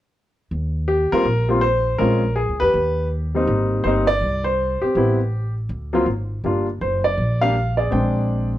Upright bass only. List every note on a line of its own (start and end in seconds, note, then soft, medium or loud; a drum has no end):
0.51 1.08 D#2 medium
1.12 muted upright bass stroke soft
1.25 1.95 A#1 medium
1.99 2.45 A#1 medium
2.49 2.60 C#2 medium
2.62 2.73 E2 medium
2.74 3.44 D#2 medium
3.47 3.82 G#1 medium
3.84 4.19 G1 medium
4.21 4.78 C2 medium
4.82 muted upright bass stroke soft
4.95 5.65 A1 medium
5.69 6.04 D2 medium
6.06 6.40 G#1 medium
6.44 6.78 G1 medium
6.81 7.15 F#1 medium
7.18 7.87 A#1 medium
7.92 8.58 A#1 medium